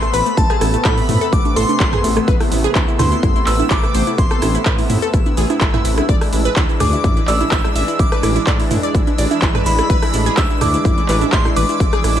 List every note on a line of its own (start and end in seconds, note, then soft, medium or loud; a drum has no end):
0.00 6.05 C3 medium
0.00 6.05 A3 medium
0.00 0.08 A3 medium
0.00 6.05 B3 medium
0.00 0.13 C6 loud
0.00 0.14 C6 loud
0.00 12.20 E6 medium
0.00 cross-stick medium
0.00 cabasa soft
0.13 0.21 A1 loud
0.13 0.20 B4 loud
0.13 0.38 B5 medium
0.13 0.37 B5 loud
0.13 open hi-hat loud
0.13 cabasa medium
0.26 0.32 A3 medium
0.26 closed hi-hat medium
0.26 cabasa soft
0.37 0.45 A1 loud
0.37 0.44 A3 medium
0.37 0.86 A5 loud
0.37 0.85 A5 loud
0.37 kick loud
0.37 closed hi-hat medium
0.37 cabasa soft
0.50 0.56 G#4 loud
0.50 cross-stick medium
0.50 closed hi-hat soft
0.50 cabasa soft
0.61 0.77 A1 loud
0.61 0.68 A3 medium
0.61 cross-stick medium
0.61 open hi-hat loud
0.61 cabasa medium
0.74 0.80 A3 medium
0.74 closed hi-hat medium
0.74 cabasa soft
0.85 1.00 A2 medium
0.85 0.92 A4 loud
0.85 1.34 B5 medium
0.85 1.32 B5 loud
0.85 kick loud
0.85 clap loud
0.85 closed hi-hat medium
0.85 cabasa soft
0.98 1.04 A3 medium
0.98 open hi-hat medium
0.98 cabasa soft
1.09 1.17 A2 loud
1.09 1.16 A3 medium
1.09 mid tom medium
1.09 open hi-hat loud
1.09 cabasa medium
1.21 1.27 A4 loud
1.21 closed hi-hat medium
1.21 cabasa soft
1.32 1.41 A1 medium
1.32 1.39 A3 medium
1.32 1.57 D6 loud
1.32 1.56 D6 loud
1.32 kick loud
1.32 closed hi-hat medium
1.32 cabasa soft
1.45 1.51 A3 medium
1.45 closed hi-hat soft
1.45 high conga medium
1.45 cabasa soft
1.56 1.64 A1 loud
1.56 1.63 A4 loud
1.56 2.01 C6 medium
1.56 open hi-hat loud
1.56 cabasa medium
1.69 1.75 A3 medium
1.69 closed hi-hat medium
1.69 high conga medium
1.69 cabasa soft
1.80 1.96 A1 medium
1.80 1.87 A3 medium
1.80 kick loud
1.80 clap loud
1.80 closed hi-hat medium
1.80 cabasa soft
1.93 1.99 G#4 loud
1.93 cross-stick medium
1.93 mid tom medium
1.93 cabasa soft
2.04 2.20 A1 medium
2.04 2.11 A3 medium
2.04 open hi-hat loud
2.04 cabasa medium
2.17 2.23 A3 medium
2.17 cross-stick medium
2.17 cabasa soft
2.28 2.36 A1 loud
2.28 2.35 B4 loud
2.28 kick loud
2.28 closed hi-hat medium
2.28 cabasa soft
2.40 2.47 E4 medium
2.40 cross-stick medium
2.40 open hi-hat medium
2.40 cabasa soft
2.52 2.67 A1 medium
2.52 2.59 E4 medium
2.52 open hi-hat loud
2.52 cabasa medium
2.64 2.70 G#4 loud
2.64 closed hi-hat medium
2.64 cabasa soft
2.75 2.83 D2 medium
2.75 2.82 E4 medium
2.75 kick loud
2.75 clap loud
2.75 closed hi-hat medium
2.75 cabasa soft
2.88 2.94 E4 medium
2.88 cabasa soft
2.99 3.15 D2 loud
2.99 3.06 E4 medium
2.99 3.48 C6 medium
2.99 3.46 C6 loud
2.99 cross-stick medium
2.99 mid tom medium
2.99 open hi-hat loud
2.99 cabasa medium
3.12 3.18 E4 medium
3.12 closed hi-hat medium
3.12 cabasa soft
3.23 3.39 A1 medium
3.23 3.30 E4 medium
3.23 kick loud
3.23 closed hi-hat medium
3.23 mid tom loud
3.23 cabasa soft
3.36 3.42 E4 medium
3.36 closed hi-hat soft
3.36 cabasa soft
3.47 3.62 A1 loud
3.47 3.54 B4 medium
3.47 3.71 E6 loud
3.47 3.70 E6 loud
3.47 clap medium
3.47 open hi-hat loud
3.47 cabasa medium
3.59 3.66 E4 medium
3.59 closed hi-hat medium
3.59 high conga medium
3.59 cabasa soft
3.70 3.86 A1 loud
3.70 3.78 E4 medium
3.70 4.20 D6 loud
3.70 4.18 D6 loud
3.70 kick loud
3.70 clap loud
3.70 closed hi-hat medium
3.70 cabasa soft
3.83 3.89 E4 medium
3.83 cross-stick medium
3.83 cabasa soft
3.94 4.02 A1 loud
3.94 4.01 C5 medium
3.94 open hi-hat loud
3.94 cabasa medium
4.07 4.13 E4 medium
4.07 closed hi-hat medium
4.07 cabasa soft
4.18 4.26 A1 loud
4.18 4.25 E4 medium
4.18 4.63 C6 medium
4.18 kick loud
4.18 closed hi-hat medium
4.18 cabasa soft
4.31 4.37 A4 medium
4.31 cross-stick medium
4.31 closed hi-hat soft
4.31 cabasa soft
4.42 4.58 A1 loud
4.42 4.49 E4 medium
4.42 cross-stick medium
4.42 open hi-hat loud
4.42 high conga medium
4.42 cabasa medium
4.55 4.61 E4 medium
4.55 closed hi-hat soft
4.55 cabasa soft
4.66 4.81 A2 medium
4.66 4.73 B4 loud
4.66 kick loud
4.66 clap loud
4.66 closed hi-hat medium
4.66 cabasa soft
4.78 4.85 E4 medium
4.78 open hi-hat medium
4.78 cabasa soft
4.90 4.98 A2 loud
4.90 4.97 E4 medium
4.90 mid tom medium
4.90 open hi-hat loud
4.90 cabasa medium
5.02 5.08 A4 loud
5.02 closed hi-hat medium
5.02 cabasa soft
5.14 5.21 A1 medium
5.14 5.20 E4 medium
5.14 kick loud
5.14 closed hi-hat medium
5.14 cabasa soft
5.26 5.32 E4 medium
5.26 closed hi-hat soft
5.26 high conga medium
5.26 cabasa soft
5.37 5.45 A1 loud
5.37 5.44 G#4 medium
5.37 open hi-hat loud
5.37 cabasa medium
5.50 5.56 E4 medium
5.50 closed hi-hat medium
5.50 high conga medium
5.50 cabasa soft
5.61 5.77 A1 loud
5.61 5.68 E4 medium
5.61 kick loud
5.61 clap loud
5.61 closed hi-hat medium
5.61 cabasa soft
5.74 5.80 E4 loud
5.74 cross-stick medium
5.74 mid tom medium
5.74 cabasa soft
5.85 6.00 A1 medium
5.85 5.92 E4 medium
5.85 open hi-hat loud
5.85 cabasa medium
5.98 6.04 E4 medium
5.98 cross-stick medium
5.98 closed hi-hat medium
5.98 high conga medium
5.98 cabasa soft
6.09 6.17 A1 loud
6.09 12.20 E3 medium
6.09 12.20 G#3 medium
6.09 12.20 D4 medium
6.09 6.16 D5 loud
6.09 kick loud
6.09 closed hi-hat medium
6.09 cabasa soft
6.21 6.28 E4 medium
6.21 cross-stick medium
6.21 open hi-hat medium
6.21 cabasa soft
6.33 6.48 A1 medium
6.33 6.40 E4 medium
6.33 open hi-hat loud
6.33 cabasa medium
6.45 6.51 B4 loud
6.45 closed hi-hat soft
6.45 cabasa soft
6.56 6.64 D2 medium
6.56 6.63 E4 medium
6.56 kick loud
6.56 clap loud
6.56 closed hi-hat medium
6.56 cabasa soft
6.69 6.75 E4 medium
6.69 cabasa soft
6.80 6.96 D2 loud
6.80 6.87 G#4 loud
6.80 7.27 D6 loud
6.80 7.29 D6 loud
6.80 cross-stick medium
6.80 mid tom medium
6.80 open hi-hat loud
6.80 cabasa medium
6.93 6.99 E4 medium
6.93 closed hi-hat medium
6.93 cabasa soft
7.04 7.20 A1 medium
7.04 7.11 E4 medium
7.04 kick loud
7.04 closed hi-hat medium
7.04 mid tom medium
7.04 cabasa soft
7.17 7.23 E4 medium
7.17 closed hi-hat soft
7.17 cabasa soft
7.28 7.43 A1 loud
7.28 7.35 D5 loud
7.28 7.51 E6 loud
7.28 clap medium
7.28 open hi-hat loud
7.28 cabasa medium
7.41 7.47 E4 medium
7.41 closed hi-hat medium
7.41 high conga medium
7.41 cabasa soft
7.51 7.67 A1 loud
7.51 7.59 E4 medium
7.51 7.99 E6 loud
7.51 8.01 E6 loud
7.51 kick loud
7.51 clap loud
7.51 closed hi-hat medium
7.51 cabasa soft
7.64 7.70 E4 medium
7.64 cross-stick medium
7.64 cabasa soft
7.75 7.83 A1 loud
7.75 7.82 E5 medium
7.75 open hi-hat loud
7.75 cabasa medium
7.88 7.94 E4 medium
7.88 closed hi-hat medium
7.88 cabasa soft
7.99 8.07 A1 loud
7.99 8.06 E4 medium
7.99 8.44 D6 loud
7.99 kick loud
7.99 closed hi-hat medium
7.99 cabasa soft
8.12 8.18 B4 loud
8.12 cross-stick medium
8.12 closed hi-hat soft
8.12 cabasa soft
8.23 8.39 A1 loud
8.23 8.30 E4 medium
8.23 cross-stick medium
8.23 open hi-hat loud
8.23 cabasa medium
8.36 8.42 E4 medium
8.36 closed hi-hat medium
8.36 cabasa soft
8.47 8.62 A2 medium
8.47 8.54 D5 loud
8.47 kick loud
8.47 clap loud
8.47 closed hi-hat medium
8.47 cabasa soft
8.60 8.66 E4 medium
8.60 open hi-hat medium
8.60 cabasa soft
8.71 8.79 A2 loud
8.71 8.78 E4 medium
8.71 mid tom medium
8.71 open hi-hat loud
8.71 cabasa medium
8.83 8.89 D5 medium
8.83 closed hi-hat medium
8.83 cabasa soft
8.95 9.02 A1 medium
8.95 9.01 E4 medium
8.95 kick loud
8.95 closed hi-hat medium
8.95 cabasa soft
9.07 9.13 E4 medium
9.07 closed hi-hat soft
9.07 high conga medium
9.07 cabasa soft
9.18 9.26 A1 loud
9.18 9.25 D5 loud
9.18 open hi-hat loud
9.18 cabasa medium
9.31 9.37 E4 medium
9.31 closed hi-hat medium
9.31 high conga medium
9.31 cabasa soft
9.42 9.58 A1 loud
9.42 9.49 E4 medium
9.42 kick loud
9.42 clap loud
9.42 closed hi-hat medium
9.42 cabasa soft
9.55 9.61 B4 medium
9.55 cross-stick medium
9.55 mid tom medium
9.55 cabasa soft
9.66 9.81 A1 medium
9.66 9.73 E4 medium
9.66 10.40 B5 medium
9.66 10.37 B5 loud
9.66 open hi-hat loud
9.66 cabasa medium
9.79 9.85 E4 medium
9.79 cross-stick medium
9.79 closed hi-hat medium
9.79 cabasa soft
9.90 9.98 A1 loud
9.90 9.97 B4 loud
9.90 kick loud
9.90 closed hi-hat medium
9.90 cabasa soft
10.02 10.09 E4 medium
10.02 cross-stick medium
10.02 open hi-hat medium
10.02 cabasa soft
10.14 10.29 A1 medium
10.14 10.21 E4 medium
10.14 open hi-hat loud
10.14 cabasa medium
10.26 10.32 G#4 loud
10.26 closed hi-hat medium
10.26 cabasa soft
10.37 10.45 D2 medium
10.37 10.44 E4 medium
10.37 10.62 E6 loud
10.37 10.61 E6 loud
10.37 kick loud
10.37 clap loud
10.37 closed hi-hat medium
10.37 cabasa soft
10.50 10.56 E4 medium
10.50 cabasa soft
10.61 10.77 D2 loud
10.61 10.68 E4 medium
10.61 11.32 D6 loud
10.61 11.35 D6 loud
10.61 cross-stick medium
10.61 mid tom medium
10.61 open hi-hat loud
10.61 cabasa medium
10.74 10.80 E4 medium
10.74 closed hi-hat medium
10.74 cabasa soft
10.85 11.00 A1 medium
10.85 10.92 E4 medium
10.85 kick loud
10.85 closed hi-hat medium
10.85 mid tom medium
10.85 cabasa soft
10.98 11.04 E4 medium
10.98 closed hi-hat soft
10.98 cabasa soft
11.09 11.24 A1 medium
11.09 11.16 B4 loud
11.09 clap medium
11.09 open hi-hat loud
11.09 cabasa medium
11.21 11.28 E4 medium
11.21 closed hi-hat medium
11.21 high conga medium
11.21 cabasa soft
11.32 11.48 A1 loud
11.32 11.40 E4 medium
11.32 11.56 C6 loud
11.32 11.57 C6 loud
11.32 kick loud
11.32 clap loud
11.32 closed hi-hat medium
11.32 cabasa soft
11.45 11.51 E4 medium
11.45 cross-stick medium
11.45 cabasa soft
11.56 11.64 A1 loud
11.56 11.63 B4 loud
11.56 12.20 D6 medium
11.56 12.20 D6 loud
11.56 open hi-hat loud
11.56 cabasa medium
11.69 11.75 E4 medium
11.69 closed hi-hat medium
11.69 cabasa soft
11.80 11.88 A1 loud
11.80 11.87 E4 medium
11.80 kick loud
11.80 closed hi-hat medium
11.80 cabasa soft
11.93 11.99 G#4 loud
11.93 cross-stick medium
11.93 closed hi-hat soft
11.93 cabasa soft
12.04 12.19 A1 loud
12.04 12.11 E4 medium
12.04 cross-stick medium
12.04 open hi-hat loud
12.04 cabasa medium
12.17 12.20 E4 medium
12.17 closed hi-hat medium
12.17 cabasa soft